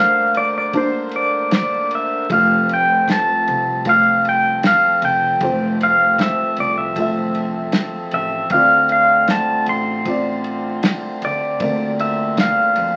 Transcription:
Already playing: D2 D3 A#3 D4 A#4 C5 F5
0.34 D5, ride
0.58 D5
0.73 A#3 D4 C5, kick, ride
1.11 ride
1.16 D5
1.51 D5, snare, ride
1.91 ride
1.95 E5
2.29 F1 F2 F3 A3 C4 F4 A4 F5, kick, ride
2.69 ride
2.73 G5
3.08 A5, kick, snare, ride
3.48 C2, ride
3.85 A3 F4 F5, kick, ride
3.89 F5
4.25 ride
4.29 G5
4.63 F5, snare, ride
5.02 F1 G5, ride
5.41 F1 F2 A3 F4 C5, kick, ride
5.81 F5, ride
6.18 E5, kick, snare, ride
6.57 C2 D5, ride
6.78 E5
6.96 A3 F4 E5, kick, ride
7.35 ride
7.72 snare, ride
8.11 A1 E5, ride
8.50 D2 D3 C4 F4 F5, kick, ride
8.54 A3 D5
8.89 F5, ride
9.28 A5, kick, snare, ride
9.66 A1 C6, ride
10.05 C4 F4 D5, kick, ride
10.44 ride
10.83 snare, ride
11.22 D2 D5, ride
11.60 D2 D3 A#3 C4 A#4 D5, kick, ride
11.99 E5, ride
12.37 F5, kick, snare, ride
12.76 F2, ride

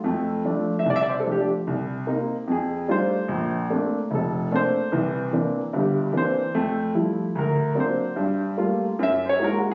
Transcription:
0.04 F2 A3
0.45 F3 A3 D4
0.79 E5
0.86 C2
0.90 D5
0.96 E5
1.03 D5
1.09 C5
1.20 A4
1.25 F3 A3 D4
1.32 G4
1.40 D4
1.67 C2
2.07 A#3 C4 D#4
2.48 F2 G#4
2.88 G3 A3 D4 D#4 F4 C5
3.28 A#1
3.70 A3 A#3 C4 D4
4.11 F1
4.15 A4
4.51 A3 A#3 C4 D4
4.56 C5
4.92 C2 E3
5.33 E3 A#3 C4 D4
5.73 G1 G2 F#4
5.79 G4
6.13 E3 A#3 C4 D4
6.17 C5
6.55 F2 A3
6.94 F3 G3 A3 E4
7.35 D2 A#4
7.75 F#3 A#3 C4 D4
7.80 C5
8.16 G2
8.57 G3 A3 A#3 F4
8.99 F#2 E5
9.29 C#5
9.39 G#3 A#3 D#4 E4 F#4
9.44 A#4
9.58 F#4

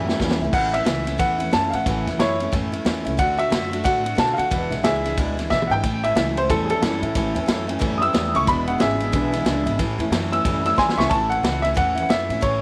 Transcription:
Already playing: F#2 E5
0.06 A2 G3 C#4 E4, snare
0.11 A3
0.18 E2 A2 E3 G3 A3, kick, snare
0.23 C#4 E4
0.31 snare
0.39 C#2 A2 E3 E4
0.43 A3 C#4
0.53 A1 A2 E3 A3 C#4 E4 F#5, kick, snare, crash
0.73 A3 C#4 E4 E5, ride
0.85 C#2 E3 A3 C#4 E4, snare, ride
1.05 A3 C#4 E4, snare, ride
1.18 E2 A2 E3 A3 C#4 E4 F#5, kick, ride
1.38 A3 C#4 E4, ride
1.51 F#2 E3 A3 C#4 E4 A5, snare, ride
1.70 A2 C#4 E4 F5, ride
1.75 A3 F#5
1.86 A1 A2 E3 A3 C#4 E4, kick, snare, ride
2.06 E2 C#4 E4, snare, ride
2.11 A3
2.18 F#2 E3 A3 C#4 E4 C#5, snare, ride
2.23 E4
2.40 A3 C#4 E4, ride
2.52 F#2 A2 E3 A3 C#4 E4, kick, ride
2.72 A3 C#4 E4, ride
2.85 E2 E3 A3 C#4 E4, snare, ride
3.05 C#2 A3 C#4 E4, ride
3.17 D2 D3 A3 D4 F#4 F#5, kick, ride
3.37 A3 D4 F#4 E5, ride
3.50 F#2 D3 A3 D4 F#4, snare, ride
3.71 A3 D4 F#4, ride
3.84 A2 D3 A3 D4 F#4 F#5, kick, ride
4.04 A3 D4 F#4, ride
4.15 B2 D3 A3 D4 F#4 A5, snare, ride
4.33 F#4 F5
4.38 D3 A3 D4 F#5, ride
4.50 E1 E2 B2 E3 G#3 D4 E4, kick, ride
4.70 B1 E3 G#3 D4 E4, snare, ride
4.83 C#2 E3 G#3 D4 E4 G#4 E5, snare, ride
5.04 E3 G#3 D4 E4, snare, ride
5.17 D2 E2 B2 E3 G#3 D4 E4, kick, ride
5.37 E3 G#3 D4 E4, snare, ride
5.50 B1 E3 G#3 D4 E4 E5, kick, snare
5.62 mid tom
5.67 G#1 E4 F#5
5.71 E3 G#3 D4 G5, floor tom
5.83 A1 A2 E3 A3 C#4 E4, kick, ride
6.04 A2 E3 A3 C#4 E4 E5, ride
6.15 C#2 A2 E3 F#3 A3 C#4 E4 E5, snare, ride
6.37 A2 E3 A3 C#4 E4 C5, ride
6.49 E2 A2 E3 G3 A3 C#4 E4 A4, kick, ride
6.65 G#4
6.70 A2 G3 A3 C#4 E4 A4, ride
6.82 F#2 A2 E3 G3 A3 C#4 E4, snare, ride
7.02 A2 E3 A3 C#4 E4, ride
7.15 A1 A2 E3 A3 C#4 E4, kick, snare, ride
7.34 E2 A2 E3 A3 C#4 E4, ride
7.46 F#2 A2 E3 F#3 A3 C#4 E4, snare, ride
7.67 A2 E3 A3 C#4 E4, ride
7.79 F#2 A2 E3 G3 A3 C#4 E4, kick, ride
7.98 A2 G3 E4 D#6
8.02 A3 C#4 E6, ride
8.13 E2 A2 E3 G3 A3 C#4 E4, snare, ride
8.34 C#2 A2 E3 A3 C#4 E4 C#6, ride
8.47 E1 E2 B2 E3 G#3 D4 E4 B5, kick, ride
8.67 E2 B2 E3 G#3 D4 E4 F#5, ride
8.78 G#1 E2 C#3 E3 G#3 D4 E4 G#4 E5, snare, ride
9.00 E2 B2 E3 G#3 D4 E4, ride
9.12 B1 E2 B2 D3 E3 G#3 D4 E4, kick, ride
9.32 E2 D3 E3 G#3 D4 E4, snare, ride
9.45 C#2 E2 D3 E3 G#3 D4 E4, snare, ride
9.65 G#1 E2 B2 E3 G#3 D4 E4, ride
9.79 A1 A2 E3 A3 C#4 E4, kick, ride
9.98 E2 A2 E3 C#4 E4, ride
10.03 A3
10.11 F#2 A2 E3 F#3 A3 C#4, snare, ride
10.15 E4
10.31 A2 E3 A3 C#4 E4 E6, ride
10.45 F#2 A2 E3 G3 A3 C#4 E4, kick, ride
10.64 A2 G3 A3 C#4 E4 E6, snare, ride
10.76 E2 A2 E3 G3 A3 C#4 G#5 C6, kick, snare
10.81 E4
10.89 snare
10.97 C#2 A2 E3 A3 C#4 E4 E5 C#6, snare
11.10 A1 A2 E3 A3 C#4 A5, kick, ride
11.14 E4
11.30 C#4 E4 F#5, ride
11.34 A3
11.43 C#2 E3 A3 C#4 E4, snare, ride
11.62 A3 C#4 E4 E5, snare, ride
11.74 E2 A2 E3 A3 C#4 E4 F#5, kick, ride
11.95 A3 C#4 E4, ride
12.02 F#5
12.09 F#2 E3 A3 C#4 E4 E5, snare, ride
12.29 A2 C#4 E4, ride
12.34 A3
12.41 A1 A2 E3 A3 C#4 E4 C#5, kick, ride

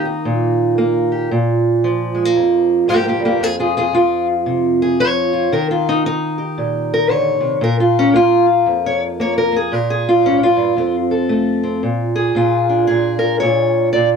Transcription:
Already playing: D#3 A#3
0.05 D#4
0.25 A#2
0.78 A#3
1.12 G4
1.31 A#2
1.84 F3
2.15 G#3
2.25 A#3
2.36 F2
2.88 G#2 A#3 G4
3.08 A#3 G4
3.19 G2
3.25 A#3 G4
3.40 F2 G#4
3.59 F4 G#4
3.77 F4 G#4
3.93 F3 F4
4.46 C3
4.82 G#4
5.00 F3 C#5
5.33 F4
5.52 D#3 A#4
5.71 F4
5.89 D#4
6.06 D#4
6.38 G4
6.58 A#2
6.94 A#4
7.09 D3 C#5
7.40 C3
7.61 A#2 A#4
7.80 F4
7.99 C#4
8.14 A#3 F4
8.47 F4
8.66 F2
8.86 C#5
9.20 A#3 C#5
9.38 A#4
9.52 A#3
9.56 G#4
9.72 A#2 A#4
9.90 G#4
10.09 F4
10.23 G#2 C#4
10.43 F4
10.57 G2
10.77 F2 C4
11.11 A4
11.29 A3
11.63 C4
11.83 A#2
12.16 G#4
12.35 A#2 F4
12.69 D4
12.87 A#2 G#4
13.19 A#4
13.40 A#2 C#5
13.93 A#2 D5

